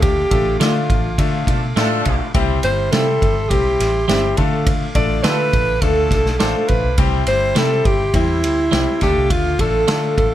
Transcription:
Already playing: D2 A3 D4 F4 A4 F5 D6
0.02 G4, kick, ride
0.31 A1 A3 D4 F4 A4, kick, ride
0.59 D3 A3 D4 F4 A4, snare, ride
0.90 A1, kick, ride
1.18 D3 A3 D4 F4 A4, kick, ride
1.47 B2 F3 A3 D4 A4, kick, ride
1.76 A2 F3 A3 D4 E4 F4 A4, snare, ride
1.83 F4
2.05 B1, kick, ride
2.34 C2 G3 C4 E4 G4 E5 C6, kick, ride
2.63 G1 G3 C4 E4 G4 C5, ride
2.92 C3 G3 C4 E4 F4 A4, snare, ride
3.00 G4
3.22 G1, kick, ride
3.49 B1 G3 C4 E4 G4, kick, ride
3.80 A1, snare, ride
4.08 G1 G3 C4 E4 G4, snare, ride
4.37 D3 A3 D4 F4 A4 F5 D6, kick, ride
4.67 kick, ride
4.95 A1 A3 D4 F4 A4 D5, kick, ride
5.24 D3 A3 D4 F4 G4 A4 B4, snare, ride
5.31 A4
5.53 A1, kick, ride
5.81 D2 A3 D4 F4 A4, kick, ride
6.11 B1, kick, snare, ride
6.26 snare
6.39 A1 A3 D4 F4 A4 C5, snare, ride
6.68 A1 B4, kick, ride
6.84 B1
6.98 C2 G3 C4 E4 G4 E5 C6, kick, ride
7.27 G1 G3 C4 E4 G4 C5, ride
7.55 C3 G3 C4 E4 G4 A4, snare, ride
7.85 G1 G4, kick, ride
8.14 E2 G3 C4 E4 G4, kick, ride
8.43 D2, ride
8.71 C2 G3 C4 E4 G4, snare, ride
9.01 D2 A3 D4 E4 G4 A4 F5 D6, kick, snare, ride
9.08 F4
9.16 C2
9.30 D2 F4, kick, ride
9.59 A1 A3 D4 F4 A4, kick, ride
9.88 D3 A3 D4 F4 A4, snare, ride
10.17 A1 A4, kick, ride

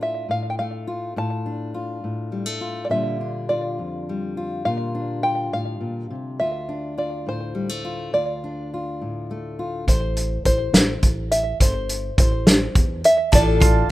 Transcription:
Already playing: A2 D4
0.01 F4 E5
0.29 A2 F5
0.50 G5
0.59 A3 F5
0.87 F4
1.16 A2 F4 A5
1.46 D4
1.74 F4
2.04 A2
2.32 G3
2.46 A3
2.61 F4
2.85 D5
2.89 A#2 D3 G3 D4 F4 E5
3.21 D4
3.49 F4 D5
3.79 F2
4.09 G3
4.37 F4
4.65 A#2 F4 F5
4.95 D4
5.23 F4 G5
5.53 A2 F5
5.81 A#2
6.11 C3
6.40 D2 F4 E5
6.69 D4
6.98 F4 D5
7.27 A2 C5
7.55 G3
7.69 A3
7.85 F4
8.13 D2 F4 D5
8.44 D4
8.74 F4
9.01 A2
9.31 A3
9.59 F4
9.87 A1 C5, kick, closed hi-hat
10.17 closed hi-hat
10.45 A1 C5, kick, closed hi-hat
10.73 A1, snare, closed hi-hat
11.03 A1, kick, closed hi-hat
11.31 E5, closed hi-hat
11.60 G1 C5, kick, closed hi-hat
11.89 closed hi-hat
12.18 A1 C5, kick, closed hi-hat
12.47 snare, closed hi-hat
12.75 E2, kick, closed hi-hat
13.04 E5, closed hi-hat
13.32 A1 A2 D3 A3 D4 F4 A4 D5 A5, kick, closed hi-hat
13.60 F4, kick, closed hi-hat

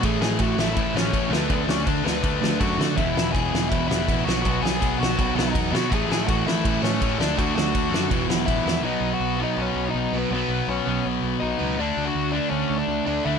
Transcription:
0.03 A1 A2 E3 A3 G#4 G#5, kick, crash
0.21 A1 A2 E3 A3 G#4 G#5, snare
0.39 A1 A2 E3 A3 F#4 F#5, kick, crash
0.57 A1 A2 E3 A3 E4 E5, snare
0.77 A1 A2 E3 A3, kick, crash
0.94 A1 A2 E3 A3 C#4 C#5, snare
1.12 A1 A2 E3 A3, kick, crash
1.30 D2 D3 A3 B3 D4 B4, snare
1.49 D2 D3 A3 D4, kick, crash
1.53 B3 B4
1.67 D2 D3 A3 C#4 D4 C#5, snare
1.85 D2 D3 A3 D4 D5, kick, crash
2.04 D2 D3 A3 B3 D4 B4, snare
2.22 D2 D3 A3 D4, kick, crash
2.41 D2 D3 A3 D4, snare
2.59 F#2 D3 A3 D4 F#4 F#5, kick, crash
2.78 D3 A3 D4, snare
2.96 E1 E2 B2 E3 E4 E5, kick, crash
3.13 E1 E2 B2 E3
3.17 snare
3.33 E1 E2 B2 E3 G#4 G#5, kick, crash
3.52 E1 E2 B2 E3, snare
3.69 E1 E2 B2 E3 E4 E5, kick, crash
3.88 E1 E2 B2 E3 E4 E5, snare
4.08 A1 E2 B2 E3, kick, crash
4.24 B1 B2 F#3 B3 F#4 F#5
4.29 snare
4.42 B1 B2 F#3 B3 F#4 F#5, kick, crash
4.61 B1 B2 F#3 B3 G#4 G#5
4.65 snare
4.80 B1 B2 F#3 B3, kick, crash
4.98 B1 B2 F#3 B3 F#4 F#5
5.03 snare
5.17 B1 B2 F#3 B3, kick, crash
5.34 B1 B2 F#3 B3 D#4 D#5
5.39 snare
5.53 E2 B2 F#3 B3, kick, crash
5.71 B2 F#3 B3
5.75 F#4 F#5, snare
5.90 A1 A2 E3 A3 G#5, kick, crash
5.95 G#4
6.09 A1 A2 E3 A3 G#5, snare
6.13 G#4
6.22 E5
6.27 A1 A2 E3 A3 F#4 F#5, kick, crash
6.45 A1 A2 E3 A3 E4 E5, snare
6.64 A1 A2 E3 A3, kick, crash
6.82 A1 A2 E3 A3 C#4 C#5, snare
7.01 A1 A2 E3 A3, kick, crash
7.19 D2 D3 A3 D4 D5, snare
7.37 D2 D3 A3 D4 F#4 F#5, kick, crash
7.55 D2 D3 A3 D4 F#4 F#5, snare
7.74 D2 D3 A3 D4, kick, crash
7.91 F#2 D3 A3 D4, snare
8.09 E1 E2 B2 E3, kick, crash
8.28 E1 E2 B2 E3, snare
8.45 A1 E2 B2 E3 E4 E5, kick, crash
8.64 E2 B2 E3, snare
8.83 B1 B2 F#3 B3 D#4 D#5
9.01 B1
9.13 F#4 F#5
9.20 B1
9.38 B2 F#3 B3 D#4
9.43 D#5
9.57 B1 C#4
9.62 C#5
9.75 B1
9.88 D#4 D#5
9.94 B1 B2 F#3 B3
10.12 B1 B2 F#3 B3
10.18 B4
10.31 B1 B2 F#3 B3 B4
10.36 B3
10.49 B1
10.68 B1 C#4 C#5
10.87 B1 B2 F#3 B3
11.06 B1
11.23 B1
11.40 B1 B2 F#3 B3 D#4 D#5
11.59 C#2 B2 F#3 B3
11.79 D2 D3 A3 D4 D5
11.83 D4
11.97 D2
12.05 F#4 F#5
12.15 D2
12.32 D4 D5
12.36 D3 A3
12.50 D2 C#4 C#5
12.70 D2
12.78 D4 D5
12.88 D2 D3 A3 D4
13.06 D2 D3 A3 D4 D5
13.24 D2 D3 A3 D4 E4 E5

